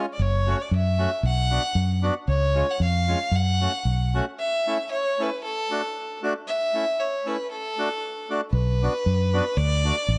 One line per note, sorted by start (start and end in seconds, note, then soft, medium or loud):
0.13 0.23 D5 medium
0.19 0.53 F#1 medium
0.19 0.63 C#5 medium
0.47 0.58 A3 medium
0.47 0.58 C#4 medium
0.47 0.58 F#4 medium
0.62 0.73 D5 medium
0.71 1.05 F#2 medium
0.76 1.22 E5 medium
0.98 1.10 A3 medium
0.98 1.10 C#4 medium
0.98 1.11 F#4 medium
1.23 1.57 B1 medium
1.27 2.02 F#5 loud
1.51 1.62 B3 medium
1.51 1.62 D4 soft
1.51 1.62 F#4 medium
1.75 2.09 F#2 medium
2.02 2.14 B3 medium
2.02 2.14 D4 medium
2.02 2.15 F#4 medium
2.28 2.62 C#2 medium
2.28 2.72 C#5 medium
2.55 2.66 G#3 medium
2.55 2.66 C#4 medium
2.55 2.67 F4 medium
2.70 2.81 F#5 medium
2.80 3.14 F2 medium
2.80 3.36 F5 medium
3.08 3.19 G#3 medium
3.08 3.19 C#4 medium
3.08 3.19 F4 medium
3.31 3.66 F#2 medium
3.31 4.15 F#5 loud
3.61 3.72 A3 medium
3.61 3.72 C#4 soft
3.61 3.72 F#4 medium
3.85 4.19 B1 medium
4.14 4.25 A3 medium
4.14 4.25 C#4 medium
4.14 4.25 F#4 medium
4.39 4.87 E5 loud
4.67 4.77 A3 medium
4.67 4.78 C#4 medium
4.67 4.78 E4 medium
4.91 5.23 C#5 medium
5.19 5.30 A3 medium
5.19 5.30 C#4 medium
5.19 5.30 E4 medium
5.19 5.43 B4 medium
5.44 6.19 A4 medium
5.71 5.81 A3 medium
5.71 5.82 D4 medium
5.71 5.82 F#4 medium
6.23 6.33 A3 medium
6.23 6.34 D4 medium
6.23 6.34 F#4 medium
6.47 7.01 E5 loud
6.74 6.85 A3 medium
6.74 6.85 C#4 medium
6.74 6.85 E4 medium
7.00 7.29 C#5 medium
7.26 7.36 A3 medium
7.26 7.37 C#4 medium
7.26 7.37 E4 medium
7.26 7.50 B4 medium
7.51 8.27 A4 medium
7.77 7.88 A3 medium
7.77 7.89 D4 medium
7.77 7.89 F#4 medium
8.30 8.41 A3 medium
8.30 8.41 D4 medium
8.30 8.41 F#4 medium
8.52 8.87 B1 medium
8.52 9.58 B4 medium
8.82 8.93 B3 medium
8.82 8.93 D4 medium
8.82 8.94 F#4 medium
9.06 9.40 F#2 medium
9.33 9.44 B3 medium
9.33 9.44 D4 medium
9.33 9.45 F#4 medium
9.57 9.91 D2 medium
9.57 10.18 D5 loud
9.84 9.96 A3 medium
9.84 9.96 D4 medium
9.84 9.96 F#4 medium
10.08 10.18 A1 medium